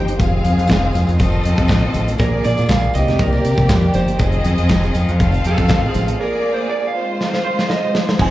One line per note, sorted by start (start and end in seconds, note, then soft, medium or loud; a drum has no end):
0.00 0.13 G1 medium
0.00 0.19 D#3 medium
0.00 0.19 A#3 medium
0.00 0.19 C4 medium
0.00 0.16 D#4 medium
0.00 0.19 G4 medium
0.00 0.41 G4 medium
0.00 0.16 C5 medium
0.00 0.16 G5 medium
0.08 closed hi-hat medium
0.19 0.38 F1 medium
0.19 2.18 D#3 medium
0.19 1.19 G#3 medium
0.19 1.17 C4 medium
0.19 2.18 C4 medium
0.19 2.92 F4 medium
0.19 1.17 G#4 medium
0.19 1.17 F5 medium
0.19 kick loud
0.19 closed hi-hat medium
0.19 tambourine medium
0.19 muted conga medium
0.44 0.55 F2 medium
0.44 closed hi-hat medium
0.44 tambourine soft
0.44 muted conga soft
0.58 0.66 F2 loud
0.58 closed hi-hat soft
0.58 tambourine soft
0.67 0.88 F1 medium
0.67 kick loud
0.67 snare loud
0.67 tambourine loud
0.67 high conga medium
0.72 clap medium
0.93 1.04 F2 loud
0.93 closed hi-hat medium
0.93 tambourine medium
1.07 1.17 F2 medium
1.07 closed hi-hat soft
1.07 tambourine soft
1.18 1.38 F1 loud
1.18 2.19 A3 medium
1.18 2.17 C4 medium
1.18 2.17 A4 medium
1.18 2.17 D#5 medium
1.18 kick loud
1.18 closed hi-hat medium
1.18 tambourine medium
1.32 tambourine soft
1.44 1.55 F2 medium
1.44 closed hi-hat medium
1.44 tambourine medium
1.56 1.67 F2 medium
1.56 kick medium
1.56 closed hi-hat soft
1.56 tambourine soft
1.68 1.88 A1 medium
1.68 kick loud
1.68 snare loud
1.68 clap medium
1.68 tambourine medium
1.68 high conga medium
1.93 2.13 A1 loud
1.93 closed hi-hat medium
1.93 tambourine medium
1.93 high conga medium
2.08 closed hi-hat medium
2.18 2.38 A#1 loud
2.18 2.94 D3 medium
2.18 2.94 G#3 medium
2.18 2.92 A#3 medium
2.18 4.18 A#3 medium
2.18 2.92 G#4 medium
2.18 2.45 A#4 medium
2.18 2.92 D5 medium
2.18 kick loud
2.18 closed hi-hat medium
2.18 tambourine medium
2.18 muted conga medium
2.44 2.55 A#2 medium
2.44 2.69 D5 loud
2.44 closed hi-hat medium
2.44 tambourine soft
2.44 muted conga medium
2.57 2.67 A#2 loud
2.57 closed hi-hat soft
2.57 tambourine soft
2.69 2.88 A#1 medium
2.69 2.93 F5 loud
2.69 kick loud
2.69 snare loud
2.69 clap loud
2.69 tambourine loud
2.69 high conga medium
2.93 3.05 C2 loud
2.93 6.17 D#3 medium
2.93 4.17 A#3 medium
2.93 5.18 C4 medium
2.93 4.17 G4 medium
2.93 4.19 G4 medium
2.93 4.17 D5 medium
2.93 3.20 D#5 loud
2.93 closed hi-hat medium
2.93 tambourine medium
3.08 3.17 C3 medium
3.08 snare soft
3.08 closed hi-hat soft
3.08 low conga medium
3.19 3.38 C2 loud
3.19 3.94 A#4 loud
3.19 kick loud
3.19 closed hi-hat medium
3.19 tambourine medium
3.19 muted conga soft
3.32 tambourine soft
3.45 3.55 C3 medium
3.45 closed hi-hat medium
3.45 tambourine medium
3.57 3.66 C3 loud
3.57 kick medium
3.57 closed hi-hat soft
3.57 tambourine soft
3.69 3.88 F2 medium
3.69 kick loud
3.69 snare loud
3.69 clap loud
3.69 tambourine loud
3.69 high conga medium
3.94 4.13 G1 medium
3.94 5.16 C5 medium
3.94 closed hi-hat medium
3.94 tambourine medium
3.94 high conga loud
4.08 closed hi-hat medium
4.19 4.38 F1 loud
4.19 5.19 G#3 medium
4.19 5.17 C4 medium
4.19 6.91 F4 medium
4.19 5.17 G#4 medium
4.19 5.17 D#5 loud
4.19 kick loud
4.19 closed hi-hat medium
4.19 tambourine medium
4.19 muted conga medium
4.32 closed hi-hat soft
4.44 4.55 F2 loud
4.44 closed hi-hat medium
4.44 tambourine soft
4.44 muted conga medium
4.58 4.67 F2 loud
4.58 closed hi-hat soft
4.58 tambourine soft
4.69 4.88 F1 medium
4.69 kick loud
4.69 snare loud
4.69 clap loud
4.69 tambourine loud
4.69 high conga medium
4.83 closed hi-hat soft
4.94 5.05 F2 loud
4.94 closed hi-hat medium
4.94 tambourine medium
5.08 5.17 F2 loud
5.08 closed hi-hat soft
5.08 tambourine soft
5.19 5.38 F1 loud
5.19 6.18 A3 medium
5.19 6.17 C4 medium
5.19 6.19 C4 medium
5.19 6.18 A4 medium
5.19 6.18 F5 loud
5.19 kick loud
5.19 closed hi-hat medium
5.19 tambourine medium
5.19 muted conga soft
5.32 closed hi-hat soft
5.32 tambourine soft
5.44 5.55 F2 medium
5.44 5.89 A4 medium
5.44 closed hi-hat medium
5.44 tambourine medium
5.58 5.67 F2 medium
5.58 kick medium
5.58 closed hi-hat soft
5.58 tambourine soft
5.68 5.88 A1 medium
5.68 kick loud
5.68 snare loud
5.68 clap loud
5.68 tambourine medium
5.68 high conga medium
5.88 6.18 G#4 medium
5.94 6.13 A1 medium
5.94 closed hi-hat medium
5.94 tambourine medium
5.94 high conga medium
6.08 closed hi-hat medium
6.20 6.94 D3 medium
6.20 8.00 G#3 medium
6.20 6.94 A#3 medium
6.20 6.93 A#3 medium
6.20 6.93 G#4 medium
6.20 6.53 A#4 loud
6.20 6.93 D5 loud
6.54 6.70 C5 medium
6.70 6.87 D5 medium
6.87 7.10 F5 medium
6.95 8.00 D#3 medium
6.95 8.17 G#3 medium
6.95 8.00 C4 medium
6.95 8.17 F4 medium
6.95 8.00 F4 medium
6.95 8.17 C5 loud
7.21 snare medium
7.33 snare medium
7.45 7.68 C5 medium
7.59 snare medium
7.69 7.92 D#5 loud
7.69 snare medium
7.95 snare loud
8.09 snare loud
8.17 8.30 F1 loud
8.17 8.30 D#3 medium
8.17 8.30 G#3 medium
8.17 8.30 C4 medium
8.17 8.30 C4 loud
8.17 8.30 D#4 medium
8.17 8.30 F4 medium
8.17 8.30 G#4 medium
8.17 8.30 C5 loud
8.17 8.30 C5 medium
8.17 kick loud
8.17 crash loud
8.17 tambourine medium
8.17 muted conga medium
8.22 8.30 G#5 medium